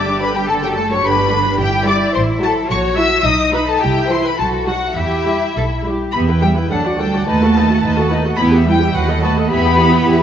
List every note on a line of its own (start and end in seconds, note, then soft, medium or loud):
0.00 0.47 G1 medium
0.00 1.03 D4 soft
0.00 0.47 G4 medium
0.00 0.22 D5 medium
0.00 0.21 D6 medium
0.08 0.22 G3 soft
0.21 0.35 D3 soft
0.21 0.35 B4 medium
0.21 0.35 B5 medium
0.35 0.49 G3 soft
0.35 0.49 G4 medium
0.35 0.49 G5 medium
0.48 1.04 F#1 medium
0.48 0.62 D3 medium
0.48 1.04 A4 medium
0.48 0.63 A4 medium
0.48 0.54 A5 medium
0.63 0.77 F#3 soft
0.63 0.78 G4 medium
0.63 0.68 G5 medium
0.75 0.91 A3 soft
0.75 0.90 A4 medium
0.75 0.89 A5 medium
0.92 1.05 F#3 medium
0.92 1.05 C#5 medium
0.92 1.05 C#6 medium
1.04 1.58 G1 medium
1.04 1.17 D3 medium
1.04 1.58 D4 medium
1.04 1.31 G4 medium
1.04 1.60 B4 medium
1.04 1.59 B5 medium
1.18 1.31 G3 soft
1.31 1.45 D3 medium
1.31 1.59 D4 medium
1.46 1.59 G3 medium
1.58 2.03 G1 medium
1.58 2.70 E4 medium
1.58 1.86 G4 medium
1.58 1.87 G5 medium
1.86 2.07 G3 medium
1.86 2.08 E4 medium
1.86 2.14 D5 medium
1.86 1.96 D6 medium
2.13 2.58 A1 medium
2.13 2.21 C5 medium
2.13 2.23 C6 medium
2.41 2.62 F#3 medium
2.41 2.63 F#4 medium
2.41 2.69 A4 medium
2.41 2.51 A5 medium
2.70 3.14 A#1 medium
2.70 3.25 F#4 medium
2.70 2.97 C#5 medium
2.70 2.79 C#6 medium
2.97 3.18 F#3 medium
2.97 3.18 E4 medium
2.97 3.25 E5 medium
2.97 3.25 E6 medium
3.25 3.70 B1 medium
3.25 3.82 D#4 medium
3.25 3.54 D#5 medium
3.25 3.54 D#6 medium
3.53 3.74 F#3 medium
3.53 3.74 D#4 medium
3.53 3.59 B4 medium
3.53 3.68 B5 medium
3.66 3.81 A4 medium
3.66 3.83 A5 medium
3.79 4.27 C2 medium
3.79 4.39 E4 medium
3.79 4.09 G4 medium
3.79 4.11 G5 medium
4.08 4.32 E3 medium
4.08 4.32 E4 medium
4.08 4.24 C5 medium
4.13 4.26 C6 medium
4.24 4.39 B4 medium
4.24 4.40 B5 medium
4.39 4.85 B1 medium
4.39 4.96 F#4 medium
4.39 4.67 A4 medium
4.39 4.47 A5 medium
4.67 4.90 F#3 medium
4.67 4.90 D#4 medium
4.67 4.97 F#4 medium
4.67 4.96 F#5 medium
4.96 5.43 E2 medium
4.96 5.83 E4 medium
4.96 5.49 G4 medium
4.96 5.85 E5 medium
5.26 5.48 G3 medium
5.26 5.48 E4 medium
5.56 6.02 B1 medium
5.56 5.64 A4 medium
5.85 6.07 G3 medium
5.85 6.07 E4 medium
5.85 6.13 G4 soft
6.12 6.64 E2 medium
6.12 6.22 B3 medium
6.12 6.28 B3 soft
6.12 6.28 G4 soft
6.12 6.27 E5 soft
6.12 6.20 B5 medium
6.28 6.42 E4 soft
6.28 6.43 B4 soft
6.28 6.42 G5 medium
6.41 6.50 G3 medium
6.41 6.57 B3 soft
6.41 6.57 G4 medium
6.41 6.56 E5 soft
6.41 6.49 G5 medium
6.56 6.71 E4 soft
6.56 6.70 B4 medium
6.56 6.71 G5 soft
6.71 7.20 D2 medium
6.71 6.98 F#3 medium
6.71 6.84 D4 medium
6.71 6.84 A4 medium
6.71 6.79 F#5 medium
6.71 6.84 A5 medium
6.85 6.99 F#4 soft
6.85 6.99 D5 soft
6.85 6.99 F#5 soft
6.99 7.26 G3 medium
6.99 7.13 D4 soft
6.99 7.13 A4 soft
6.99 7.26 G5 medium
6.99 7.13 A5 soft
7.13 7.27 F#4 soft
7.13 7.27 D5 soft
7.13 7.28 F#5 medium
7.26 7.76 D#2 medium
7.26 8.09 A3 medium
7.26 7.40 D#4 soft
7.26 7.40 B4 medium
7.26 7.40 D#5 medium
7.26 8.09 A5 medium
7.42 7.55 F#4 soft
7.42 7.56 A4 soft
7.42 7.56 F#5 soft
7.55 7.69 D#4 soft
7.55 7.69 B4 soft
7.55 7.70 D#5 soft
7.69 7.83 F#4 medium
7.69 7.83 A4 soft
7.69 7.84 F#5 medium
7.83 8.33 D#2 medium
7.83 7.96 D#4 medium
7.83 7.96 B4 medium
7.83 7.97 D#5 medium
7.97 8.11 F#4 medium
7.97 8.11 A4 medium
7.97 8.13 F#5 soft
8.11 8.25 D#4 medium
8.11 8.25 B4 medium
8.11 8.26 D#5 soft
8.25 8.39 F#4 soft
8.25 8.39 A4 soft
8.25 8.40 F#5 medium
8.38 8.88 E2 medium
8.38 8.65 B3 medium
8.38 8.53 E4 medium
8.38 8.53 B4 medium
8.38 8.53 G5 medium
8.38 8.46 B5 medium
8.53 8.67 G4 medium
8.53 8.68 E5 medium
8.67 8.95 G3 medium
8.67 8.82 E4 medium
8.67 8.82 B4 medium
8.67 8.95 G5 medium
8.71 8.83 G5 medium
8.80 8.95 G4 medium
8.80 8.97 E5 medium
8.94 9.44 D#2 medium
8.94 9.24 F#3 medium
8.94 9.08 F#4 medium
8.94 9.08 B4 medium
8.94 9.09 D#5 soft
8.94 9.23 F#5 medium
9.09 9.23 A4 medium
9.09 9.24 D#5 medium
9.09 9.24 F#5 medium
9.23 9.51 A3 medium
9.23 9.37 F#4 medium
9.23 9.37 B4 medium
9.23 9.37 D#5 soft
9.23 9.31 A5 medium
9.37 9.51 A4 soft
9.37 9.51 D#5 medium
9.37 9.52 F#5 medium
9.50 10.00 E2 medium
9.50 10.23 B3 loud
9.50 9.63 E4 medium
9.50 9.63 G4 medium
9.50 9.65 E5 medium
9.50 10.23 B5 medium
9.64 9.77 E4 medium
9.64 9.77 G4 medium
9.64 9.79 G5 medium
9.78 9.90 E4 medium
9.78 9.90 G4 medium
9.78 9.93 E5 medium
9.91 10.04 E4 medium
9.91 10.04 G4 medium
9.91 10.07 G5 medium
10.05 10.23 E2 medium
10.05 10.17 E4 medium
10.05 10.17 G4 medium
10.05 10.20 E5 medium
10.18 10.23 E4 medium
10.18 10.23 G4 medium